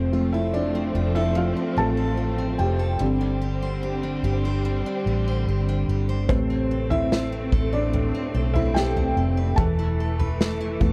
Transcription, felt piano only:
0.00 0.12 C4 medium
0.00 0.29 C5 medium
0.12 1.77 F3 soft
0.12 1.77 A3 soft
0.12 1.78 C4 medium
0.32 0.53 E4 medium
0.32 0.54 E5 medium
0.53 1.12 D4 medium
0.53 1.17 D5 medium
1.15 1.35 E4 medium
1.15 1.36 E5 medium
1.36 1.75 F4 medium
1.36 1.74 F5 medium
1.78 2.15 F3 soft
1.78 2.15 A3 soft
1.78 2.15 C4 soft
1.78 2.56 A4 medium
1.78 2.62 A5 medium
2.58 4.20 G4 medium
2.58 4.19 G5 medium
3.01 4.20 D3 soft
3.01 4.20 G3 soft
3.01 4.20 C4 soft
6.29 7.48 C3 soft
6.29 7.49 A3 soft
6.29 6.87 C4 medium
6.29 7.49 B4 soft
6.29 6.93 C5 medium
6.90 7.69 E4 medium
6.90 7.69 E5 medium
7.73 8.52 D4 medium
7.73 8.51 D5 medium
8.54 8.61 E4 medium
8.54 8.59 E5 medium
8.74 9.54 G4 medium
8.74 9.60 G5 medium
9.56 10.93 A4 medium
9.56 10.93 A5 medium
10.80 10.93 E3 soft
10.80 10.93 A3 soft
10.80 10.93 B3 medium

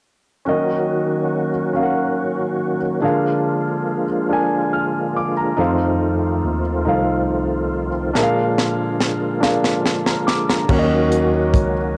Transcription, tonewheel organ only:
0.46 3.01 D#3 soft
0.46 3.00 F#3 soft
0.46 3.00 A#3 soft
0.46 3.00 C#4 soft
0.46 3.00 F#4 soft
3.01 5.55 D3 soft
3.01 10.64 F3 soft
3.01 5.55 G#3 soft
3.01 5.56 A#3 soft
3.01 10.64 F4 medium
5.57 8.11 D#3 soft
5.57 8.11 A3 soft
5.57 8.11 C4 soft
8.15 10.67 D3 medium
8.15 10.67 G#3 soft
8.15 10.67 A#3 soft
10.68 11.97 D#3 medium
10.68 11.97 F#3 medium
10.68 11.97 A#3 medium
10.68 11.97 C#4 soft
10.68 11.97 F#4 medium

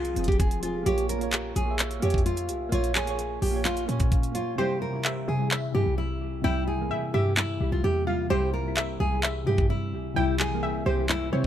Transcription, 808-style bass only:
0.00 0.15 C2 loud
0.16 0.64 F1 loud
0.63 0.76 E1 loud
0.75 0.86 F1 loud
0.86 1.53 A#1 loud
1.56 2.01 A#1 loud
2.02 2.50 F2 loud
2.49 2.71 C2 loud
2.72 3.39 A#1 loud
3.42 3.87 A#1 loud
3.88 4.55 A#2 loud
5.28 5.73 C3 loud
5.75 5.86 G2 loud
5.86 6.42 C2 loud
6.44 6.92 C2 loud
6.91 7.13 C3 loud
7.14 7.59 G2 loud
7.61 7.72 C2 loud
7.72 7.83 C2 loud
7.84 8.28 E2 loud
8.30 8.97 C2 loud
9.00 9.45 C2 loud
9.47 9.95 G2 loud
9.93 10.15 C#2 loud
10.16 10.83 C2 loud
10.86 11.31 C2 loud
11.33 11.47 C3 loud

